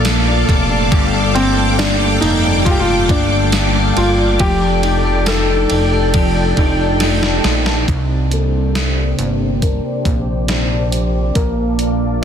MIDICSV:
0, 0, Header, 1, 6, 480
1, 0, Start_track
1, 0, Tempo, 869565
1, 507, Time_signature, 4, 2, 24, 8
1, 6757, End_track
2, 0, Start_track
2, 0, Title_t, "String machine"
2, 0, Program_c, 0, 50
2, 0, Note_on_c, 0, 69, 74
2, 0, Note_on_c, 0, 77, 67
2, 0, Note_on_c, 0, 81, 71
2, 0, Note_on_c, 0, 86, 88
2, 483, Note_off_c, 0, 81, 0
2, 507, Note_on_c, 0, 79, 70
2, 2404, Note_off_c, 0, 69, 0
2, 2404, Note_off_c, 0, 77, 0
2, 2408, Note_off_c, 0, 79, 0
2, 2427, Note_on_c, 0, 79, 69
2, 2428, Note_on_c, 0, 69, 79
2, 2428, Note_on_c, 0, 74, 69
2, 4324, Note_off_c, 0, 86, 0
2, 4328, Note_off_c, 0, 74, 0
2, 4328, Note_off_c, 0, 79, 0
2, 4329, Note_off_c, 0, 69, 0
2, 4349, Note_on_c, 0, 72, 73
2, 4350, Note_on_c, 0, 74, 61
2, 4351, Note_on_c, 0, 79, 68
2, 4352, Note_on_c, 0, 86, 74
2, 6249, Note_off_c, 0, 72, 0
2, 6249, Note_off_c, 0, 74, 0
2, 6250, Note_off_c, 0, 79, 0
2, 6268, Note_on_c, 0, 81, 70
2, 6270, Note_on_c, 0, 77, 72
2, 6271, Note_on_c, 0, 58, 67
2, 6757, Note_off_c, 0, 58, 0
2, 6757, Note_off_c, 0, 77, 0
2, 6757, Note_off_c, 0, 81, 0
2, 6757, Note_off_c, 0, 86, 0
2, 6757, End_track
3, 0, Start_track
3, 0, Title_t, "Felt piano"
3, 0, Program_c, 1, 0
3, 743, Note_on_c, 1, 60, 84
3, 985, Note_on_c, 1, 62, 77
3, 992, Note_off_c, 1, 60, 0
3, 1209, Note_off_c, 1, 62, 0
3, 1218, Note_on_c, 1, 63, 90
3, 1464, Note_on_c, 1, 65, 94
3, 1470, Note_off_c, 1, 63, 0
3, 1492, Note_on_c, 1, 67, 84
3, 1505, Note_off_c, 1, 65, 0
3, 1538, Note_off_c, 1, 67, 0
3, 1544, Note_on_c, 1, 65, 107
3, 1712, Note_off_c, 1, 65, 0
3, 1716, Note_on_c, 1, 62, 94
3, 2192, Note_on_c, 1, 65, 88
3, 2206, Note_off_c, 1, 62, 0
3, 2430, Note_on_c, 1, 67, 104
3, 2437, Note_off_c, 1, 65, 0
3, 2914, Note_on_c, 1, 69, 95
3, 2923, Note_off_c, 1, 67, 0
3, 3609, Note_off_c, 1, 69, 0
3, 4600, Note_on_c, 1, 69, 74
3, 5312, Note_on_c, 1, 70, 78
3, 5335, Note_off_c, 1, 69, 0
3, 6259, Note_off_c, 1, 70, 0
3, 6267, Note_on_c, 1, 70, 86
3, 6757, Note_off_c, 1, 70, 0
3, 6757, End_track
4, 0, Start_track
4, 0, Title_t, "Clean electric guitar"
4, 0, Program_c, 2, 27
4, 0, Note_on_c, 2, 46, 72
4, 0, Note_on_c, 2, 62, 62
4, 0, Note_on_c, 2, 69, 68
4, 22, Note_on_c, 2, 58, 67
4, 143, Note_off_c, 2, 62, 0
4, 146, Note_on_c, 2, 62, 63
4, 262, Note_off_c, 2, 58, 0
4, 264, Note_on_c, 2, 58, 68
4, 384, Note_off_c, 2, 62, 0
4, 387, Note_on_c, 2, 62, 66
4, 501, Note_off_c, 2, 46, 0
4, 503, Note_off_c, 2, 69, 0
4, 503, Note_on_c, 2, 43, 80
4, 506, Note_on_c, 2, 67, 74
4, 621, Note_off_c, 2, 62, 0
4, 623, Note_on_c, 2, 62, 67
4, 741, Note_off_c, 2, 58, 0
4, 743, Note_on_c, 2, 58, 67
4, 858, Note_off_c, 2, 62, 0
4, 860, Note_on_c, 2, 62, 63
4, 975, Note_off_c, 2, 58, 0
4, 982, Note_on_c, 2, 58, 65
4, 1100, Note_off_c, 2, 62, 0
4, 1102, Note_on_c, 2, 62, 56
4, 1216, Note_off_c, 2, 58, 0
4, 1223, Note_on_c, 2, 58, 70
4, 1342, Note_off_c, 2, 62, 0
4, 1344, Note_on_c, 2, 62, 64
4, 1455, Note_off_c, 2, 43, 0
4, 1462, Note_on_c, 2, 43, 87
4, 1463, Note_off_c, 2, 67, 0
4, 1465, Note_on_c, 2, 67, 68
4, 1582, Note_off_c, 2, 62, 0
4, 1584, Note_on_c, 2, 62, 72
4, 1698, Note_off_c, 2, 58, 0
4, 1705, Note_on_c, 2, 58, 69
4, 1824, Note_off_c, 2, 62, 0
4, 1827, Note_on_c, 2, 62, 61
4, 1940, Note_off_c, 2, 58, 0
4, 1947, Note_on_c, 2, 58, 63
4, 2066, Note_off_c, 2, 62, 0
4, 2068, Note_on_c, 2, 62, 62
4, 2179, Note_off_c, 2, 58, 0
4, 2186, Note_on_c, 2, 58, 70
4, 2305, Note_off_c, 2, 62, 0
4, 2307, Note_on_c, 2, 62, 63
4, 2424, Note_on_c, 2, 53, 77
4, 2426, Note_off_c, 2, 67, 0
4, 2428, Note_on_c, 2, 67, 58
4, 2473, Note_off_c, 2, 43, 0
4, 2474, Note_off_c, 2, 58, 0
4, 2544, Note_off_c, 2, 62, 0
4, 2546, Note_on_c, 2, 62, 66
4, 2667, Note_on_c, 2, 63, 64
4, 2785, Note_off_c, 2, 62, 0
4, 2787, Note_on_c, 2, 62, 63
4, 2906, Note_off_c, 2, 63, 0
4, 2908, Note_on_c, 2, 63, 70
4, 3029, Note_off_c, 2, 62, 0
4, 3031, Note_on_c, 2, 62, 56
4, 3146, Note_off_c, 2, 63, 0
4, 3148, Note_on_c, 2, 63, 66
4, 3268, Note_off_c, 2, 62, 0
4, 3271, Note_on_c, 2, 62, 57
4, 3383, Note_off_c, 2, 53, 0
4, 3390, Note_on_c, 2, 53, 71
4, 3391, Note_off_c, 2, 67, 0
4, 3393, Note_on_c, 2, 67, 67
4, 3508, Note_off_c, 2, 62, 0
4, 3510, Note_on_c, 2, 62, 65
4, 3624, Note_off_c, 2, 63, 0
4, 3626, Note_on_c, 2, 63, 63
4, 3749, Note_off_c, 2, 62, 0
4, 3751, Note_on_c, 2, 62, 65
4, 3868, Note_off_c, 2, 63, 0
4, 3870, Note_on_c, 2, 63, 69
4, 3990, Note_off_c, 2, 62, 0
4, 3993, Note_on_c, 2, 62, 59
4, 4108, Note_off_c, 2, 63, 0
4, 4110, Note_on_c, 2, 63, 64
4, 4226, Note_off_c, 2, 62, 0
4, 4228, Note_on_c, 2, 62, 60
4, 4347, Note_on_c, 2, 48, 61
4, 4397, Note_off_c, 2, 53, 0
4, 4587, Note_off_c, 2, 63, 0
4, 4589, Note_on_c, 2, 58, 48
4, 4826, Note_off_c, 2, 62, 0
4, 4828, Note_on_c, 2, 62, 57
4, 5067, Note_off_c, 2, 58, 0
4, 5069, Note_on_c, 2, 58, 50
4, 5308, Note_off_c, 2, 62, 0
4, 5310, Note_on_c, 2, 62, 49
4, 5325, Note_off_c, 2, 67, 0
4, 5546, Note_off_c, 2, 58, 0
4, 5548, Note_on_c, 2, 58, 51
4, 5785, Note_off_c, 2, 62, 0
4, 5787, Note_on_c, 2, 62, 56
4, 6024, Note_on_c, 2, 67, 61
4, 6265, Note_off_c, 2, 58, 0
4, 6265, Note_on_c, 2, 58, 72
4, 6267, Note_off_c, 2, 48, 0
4, 6314, Note_off_c, 2, 67, 0
4, 6503, Note_off_c, 2, 62, 0
4, 6503, Note_on_c, 2, 62, 53
4, 6757, Note_off_c, 2, 58, 0
4, 6757, Note_off_c, 2, 62, 0
4, 6757, End_track
5, 0, Start_track
5, 0, Title_t, "Analog synth bass"
5, 0, Program_c, 3, 38
5, 0, Note_on_c, 3, 34, 91
5, 246, Note_off_c, 3, 34, 0
5, 271, Note_on_c, 3, 29, 103
5, 497, Note_off_c, 3, 29, 0
5, 510, Note_on_c, 3, 31, 117
5, 1206, Note_off_c, 3, 31, 0
5, 1230, Note_on_c, 3, 29, 85
5, 1708, Note_on_c, 3, 31, 87
5, 1717, Note_off_c, 3, 29, 0
5, 2166, Note_off_c, 3, 31, 0
5, 2192, Note_on_c, 3, 31, 91
5, 2418, Note_off_c, 3, 31, 0
5, 2429, Note_on_c, 3, 29, 108
5, 3126, Note_off_c, 3, 29, 0
5, 3153, Note_on_c, 3, 29, 94
5, 3608, Note_off_c, 3, 29, 0
5, 3629, Note_on_c, 3, 29, 109
5, 4086, Note_off_c, 3, 29, 0
5, 4112, Note_on_c, 3, 34, 94
5, 4337, Note_off_c, 3, 34, 0
5, 4351, Note_on_c, 3, 36, 96
5, 5047, Note_off_c, 3, 36, 0
5, 5073, Note_on_c, 3, 31, 89
5, 5412, Note_off_c, 3, 31, 0
5, 5551, Note_on_c, 3, 34, 85
5, 6247, Note_off_c, 3, 34, 0
5, 6270, Note_on_c, 3, 34, 101
5, 6757, Note_off_c, 3, 34, 0
5, 6757, End_track
6, 0, Start_track
6, 0, Title_t, "Drums"
6, 27, Note_on_c, 9, 51, 67
6, 29, Note_on_c, 9, 38, 106
6, 31, Note_on_c, 9, 54, 64
6, 82, Note_off_c, 9, 51, 0
6, 85, Note_off_c, 9, 38, 0
6, 86, Note_off_c, 9, 54, 0
6, 269, Note_on_c, 9, 36, 92
6, 272, Note_on_c, 9, 51, 51
6, 324, Note_off_c, 9, 36, 0
6, 327, Note_off_c, 9, 51, 0
6, 507, Note_on_c, 9, 36, 110
6, 508, Note_on_c, 9, 51, 53
6, 563, Note_off_c, 9, 36, 0
6, 563, Note_off_c, 9, 51, 0
6, 748, Note_on_c, 9, 51, 43
6, 804, Note_off_c, 9, 51, 0
6, 987, Note_on_c, 9, 54, 58
6, 990, Note_on_c, 9, 38, 106
6, 991, Note_on_c, 9, 51, 50
6, 1043, Note_off_c, 9, 54, 0
6, 1045, Note_off_c, 9, 38, 0
6, 1046, Note_off_c, 9, 51, 0
6, 1227, Note_on_c, 9, 51, 56
6, 1283, Note_off_c, 9, 51, 0
6, 1470, Note_on_c, 9, 36, 96
6, 1471, Note_on_c, 9, 51, 60
6, 1525, Note_off_c, 9, 36, 0
6, 1526, Note_off_c, 9, 51, 0
6, 1708, Note_on_c, 9, 36, 88
6, 1709, Note_on_c, 9, 51, 45
6, 1763, Note_off_c, 9, 36, 0
6, 1764, Note_off_c, 9, 51, 0
6, 1945, Note_on_c, 9, 51, 63
6, 1948, Note_on_c, 9, 38, 101
6, 1949, Note_on_c, 9, 54, 72
6, 2000, Note_off_c, 9, 51, 0
6, 2003, Note_off_c, 9, 38, 0
6, 2004, Note_off_c, 9, 54, 0
6, 2189, Note_on_c, 9, 51, 51
6, 2245, Note_off_c, 9, 51, 0
6, 2426, Note_on_c, 9, 51, 60
6, 2428, Note_on_c, 9, 36, 105
6, 2481, Note_off_c, 9, 51, 0
6, 2483, Note_off_c, 9, 36, 0
6, 2667, Note_on_c, 9, 51, 38
6, 2722, Note_off_c, 9, 51, 0
6, 2905, Note_on_c, 9, 54, 62
6, 2907, Note_on_c, 9, 38, 118
6, 2908, Note_on_c, 9, 51, 49
6, 2960, Note_off_c, 9, 54, 0
6, 2962, Note_off_c, 9, 38, 0
6, 2963, Note_off_c, 9, 51, 0
6, 3144, Note_on_c, 9, 51, 51
6, 3199, Note_off_c, 9, 51, 0
6, 3388, Note_on_c, 9, 51, 65
6, 3390, Note_on_c, 9, 36, 88
6, 3443, Note_off_c, 9, 51, 0
6, 3445, Note_off_c, 9, 36, 0
6, 3627, Note_on_c, 9, 51, 41
6, 3628, Note_on_c, 9, 36, 80
6, 3682, Note_off_c, 9, 51, 0
6, 3683, Note_off_c, 9, 36, 0
6, 3865, Note_on_c, 9, 51, 66
6, 3867, Note_on_c, 9, 38, 60
6, 3920, Note_off_c, 9, 51, 0
6, 3922, Note_off_c, 9, 38, 0
6, 3990, Note_on_c, 9, 38, 71
6, 4045, Note_off_c, 9, 38, 0
6, 4108, Note_on_c, 9, 38, 97
6, 4109, Note_on_c, 9, 51, 49
6, 4164, Note_off_c, 9, 38, 0
6, 4164, Note_off_c, 9, 51, 0
6, 4229, Note_on_c, 9, 38, 91
6, 4284, Note_off_c, 9, 38, 0
6, 4350, Note_on_c, 9, 36, 84
6, 4352, Note_on_c, 9, 42, 53
6, 4405, Note_off_c, 9, 36, 0
6, 4407, Note_off_c, 9, 42, 0
6, 4590, Note_on_c, 9, 42, 43
6, 4645, Note_off_c, 9, 42, 0
6, 4832, Note_on_c, 9, 38, 94
6, 4833, Note_on_c, 9, 42, 52
6, 4887, Note_off_c, 9, 38, 0
6, 4888, Note_off_c, 9, 42, 0
6, 5071, Note_on_c, 9, 42, 51
6, 5126, Note_off_c, 9, 42, 0
6, 5311, Note_on_c, 9, 36, 80
6, 5312, Note_on_c, 9, 42, 65
6, 5367, Note_off_c, 9, 36, 0
6, 5367, Note_off_c, 9, 42, 0
6, 5549, Note_on_c, 9, 36, 74
6, 5551, Note_on_c, 9, 42, 43
6, 5605, Note_off_c, 9, 36, 0
6, 5607, Note_off_c, 9, 42, 0
6, 5787, Note_on_c, 9, 42, 67
6, 5790, Note_on_c, 9, 38, 85
6, 5842, Note_off_c, 9, 42, 0
6, 5845, Note_off_c, 9, 38, 0
6, 6030, Note_on_c, 9, 42, 51
6, 6085, Note_off_c, 9, 42, 0
6, 6267, Note_on_c, 9, 42, 55
6, 6268, Note_on_c, 9, 36, 86
6, 6322, Note_off_c, 9, 42, 0
6, 6323, Note_off_c, 9, 36, 0
6, 6507, Note_on_c, 9, 42, 37
6, 6562, Note_off_c, 9, 42, 0
6, 6757, End_track
0, 0, End_of_file